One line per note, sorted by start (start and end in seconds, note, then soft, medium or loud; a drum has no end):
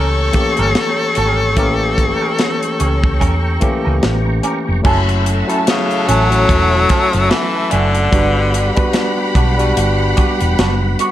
0.00 0.29 C#2 medium
0.00 4.04 A4 medium
0.00 3.99 C#5 medium
0.00 4.81 G5 medium
0.00 4.81 A#5 medium
0.00 3.99 C#6 loud
0.00 4.81 C#6 medium
0.32 1.13 E3 medium
0.32 1.13 A3 medium
0.32 1.13 A#3 medium
0.32 1.14 C#4 medium
0.32 1.14 G4 medium
0.32 muted clean electric guitar stroke soft
0.32 kick medium
0.32 closed hi-hat medium
0.57 0.73 G1 medium
0.57 0.68 C#4 soft
0.57 0.68 G4 medium
0.57 0.67 A#4 medium
0.57 closed hi-hat soft
0.75 snare loud
0.75 closed hi-hat medium
1.00 muted clean electric guitar stroke soft
1.15 1.57 G#1 medium
1.15 1.39 C#4 medium
1.15 1.40 G4 medium
1.15 1.39 A#4 medium
1.15 closed hi-hat medium
1.40 muted clean electric guitar stroke soft
1.56 2.13 A1 medium
1.56 2.65 E3 medium
1.56 2.66 A3 medium
1.56 2.66 A#3 medium
1.56 1.71 C#4 medium
1.56 2.66 C#4 medium
1.56 1.71 G4 medium
1.56 2.67 G4 loud
1.56 1.72 A#4 medium
1.56 kick loud
1.56 closed hi-hat medium
1.98 muted clean electric guitar stroke soft
1.98 kick medium
1.98 closed hi-hat medium
2.22 2.31 C#4 soft
2.22 2.31 G4 soft
2.22 2.31 A#4 medium
2.38 muted clean electric guitar stroke soft
2.38 snare loud
2.38 closed hi-hat medium
2.63 closed hi-hat soft
2.79 3.22 C#2 medium
2.79 2.92 C#4 medium
2.79 2.93 G4 soft
2.79 2.93 C#5 medium
2.79 closed hi-hat medium
3.03 muted clean electric guitar stroke soft
3.03 kick medium
3.20 3.57 E2 medium
3.20 3.34 C#4 medium
3.20 3.34 G4 medium
3.20 3.35 A#4 medium
3.20 kick medium
3.20 closed hi-hat medium
3.60 4.41 E3 medium
3.60 4.41 A3 medium
3.60 4.41 A#3 medium
3.60 4.42 C#4 medium
3.60 4.42 G4 loud
3.60 muted clean electric guitar stroke soft
3.60 kick medium
3.60 closed hi-hat medium
3.85 4.01 C#2 medium
3.85 3.95 C#4 soft
3.85 3.95 G4 soft
3.85 3.94 A#4 medium
4.03 4.39 A1 loud
4.03 snare loud
4.03 closed hi-hat medium
4.26 muted clean electric guitar stroke soft
4.43 4.57 C#4 medium
4.43 4.58 G4 medium
4.43 4.58 A#4 medium
4.43 closed hi-hat medium
4.68 4.83 F1 medium
4.68 muted clean electric guitar stroke soft
4.83 5.41 F#1 medium
4.83 5.24 F#3 medium
4.83 5.24 A3 medium
4.83 5.24 C#4 medium
4.83 4.99 C#4 medium
4.83 5.25 E4 medium
4.83 4.99 E4 medium
4.83 8.10 F#4 medium
4.83 5.25 A4 medium
4.83 8.10 A4 medium
4.83 4.99 A4 medium
4.83 8.09 E5 medium
4.83 11.12 F#5 medium
4.83 8.09 A5 medium
4.83 8.10 E6 medium
4.83 kick loud
4.83 crash loud
5.09 closed hi-hat soft
5.26 muted clean electric guitar stroke soft
5.26 closed hi-hat medium
5.47 5.99 F#3 medium
5.47 6.00 A3 medium
5.47 6.00 C#4 medium
5.47 5.59 C#4 soft
5.47 6.00 E4 medium
5.47 5.59 E4 soft
5.47 5.59 A4 medium
5.47 6.01 A4 medium
5.47 closed hi-hat soft
5.67 6.09 C#3 medium
5.67 muted clean electric guitar stroke soft
5.67 snare loud
5.67 closed hi-hat medium
5.91 muted clean electric guitar stroke soft
5.91 closed hi-hat soft
6.08 6.44 A1 medium
6.08 7.32 F#3 loud
6.08 6.22 C#4 medium
6.08 6.23 E4 medium
6.08 6.23 A4 medium
6.08 closed hi-hat medium
6.30 7.34 F#3 medium
6.30 7.34 A3 medium
6.30 7.34 C#4 medium
6.30 7.34 E4 medium
6.30 7.35 A4 medium
6.30 closed hi-hat soft
6.49 6.85 E1 medium
6.49 muted clean electric guitar stroke soft
6.49 kick medium
6.49 closed hi-hat medium
6.74 muted clean electric guitar stroke soft
6.89 7.04 C#4 medium
6.89 7.04 E4 medium
6.89 7.04 A4 medium
6.89 kick medium
6.89 snare soft
6.89 closed hi-hat medium
7.13 7.29 F#1 medium
7.13 muted clean electric guitar stroke soft
7.13 closed hi-hat soft
7.30 7.73 E3 loud
7.30 muted clean electric guitar stroke soft
7.30 snare loud
7.30 closed hi-hat medium
7.55 muted clean electric guitar stroke soft
7.71 8.08 F#1 medium
7.71 8.95 D3 medium
7.71 7.85 C#4 medium
7.71 7.85 E4 medium
7.71 7.86 B4 medium
7.71 closed hi-hat medium
7.95 muted clean electric guitar stroke soft
7.95 closed hi-hat soft
8.11 8.69 G1 loud
8.11 8.52 G3 medium
8.11 11.12 G3 medium
8.11 8.52 B3 medium
8.11 8.52 D4 medium
8.11 8.27 D4 medium
8.11 8.53 F#4 medium
8.11 8.27 F#4 medium
8.11 11.12 G4 medium
8.11 8.53 B4 medium
8.11 8.27 B4 medium
8.11 11.12 F#5 medium
8.11 11.12 B5 medium
8.11 kick loud
8.11 closed hi-hat medium
8.54 muted clean electric guitar stroke soft
8.54 closed hi-hat medium
8.76 9.28 G3 medium
8.76 9.28 B3 medium
8.76 9.28 D4 medium
8.76 8.87 D4 soft
8.76 9.28 F#4 medium
8.76 8.87 F#4 medium
8.76 8.86 B4 medium
8.76 9.29 B4 loud
8.76 kick loud
8.76 closed hi-hat soft
8.93 muted clean electric guitar stroke soft
8.93 snare loud
8.93 closed hi-hat medium
9.18 muted clean electric guitar stroke soft
9.35 9.71 B1 medium
9.35 9.49 D4 medium
9.35 9.50 F#4 medium
9.35 9.50 B4 medium
9.35 kick loud
9.35 closed hi-hat medium
9.58 10.61 G3 medium
9.58 10.62 B3 medium
9.58 10.62 D4 medium
9.58 10.63 F#4 medium
9.58 10.63 B4 loud
9.58 muted clean electric guitar stroke soft
9.58 closed hi-hat soft
9.77 10.13 G1 medium
9.77 muted clean electric guitar stroke soft
9.77 closed hi-hat medium
10.00 muted clean electric guitar stroke soft
10.17 10.31 D4 medium
10.17 10.31 F#4 medium
10.17 10.31 B4 medium
10.17 kick medium
10.17 closed hi-hat medium
10.40 10.56 E1 medium
10.40 muted clean electric guitar stroke soft
10.40 closed hi-hat soft
10.59 10.94 F#1 loud
10.59 10.72 D4 medium
10.59 10.73 F#4 medium
10.59 10.73 B4 medium
10.59 snare loud
10.59 closed hi-hat medium
10.83 muted clean electric guitar stroke soft
10.99 11.12 D4 medium
10.99 11.12 F#4 medium
10.99 11.12 C#5 medium
10.99 closed hi-hat medium